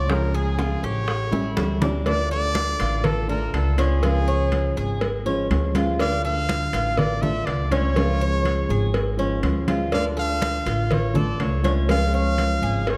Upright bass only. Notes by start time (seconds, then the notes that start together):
Already playing: C#2
0.83 A1
1.57 D2
2.81 A1
3.54 C#2
4.77 G#1
5.51 D2
6.73 A1
7.47 C#2
8.69 G#1
9.43 D2
10.66 A1
11.40 C#2
12.62 G#1